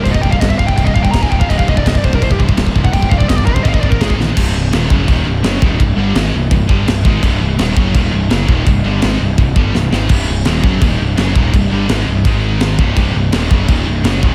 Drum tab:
CC |x---x---x---x---|x---x---x---x---|x---x---x---x---|x---x---x---x---|
SD |----o-------o---|----o-------o---|----o-------o-o-|----o-------o---|
BD |oooooooooooooooo|oooooooooooooooo|oooooooooooooo--|o-----o-o-----o-|

CC |x---x---x---x---|x---x---x---x---|x---x---x-------|x---x---x---x---|
SD |----o-------o---|----o-------o---|----o-------o-o-|----o-------o---|
BD |o-------o-o---o-|o-----o-o-----o-|o-------o-o-----|o-----o-o-----o-|

CC |x---x---x---x---|x---x---x---x---|
SD |----o-------o---|----o-------o---|
BD |o-------o-----o-|o-----o-o-----o-|